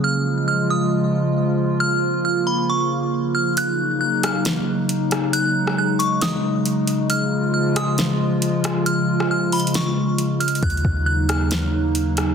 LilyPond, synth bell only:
\new Staff \with { instrumentName = "Synth bell" } { \time 4/4 \key ees \minor \tempo 4 = 136 f'''4 f'''8 ees'''8 r2 | f'''4 f'''8 ces'''8 des'''4. f'''8 | ges'''4 ges'''8 f'''8 r2 | ges'''4 ges'''8 des'''8 ees'''4 r4 |
f'''4 f'''8 ees'''8 r2 | f'''4 f'''8 ces'''8 des'''4. f'''8 | ges'''4 ges'''8 f'''8 r2 | }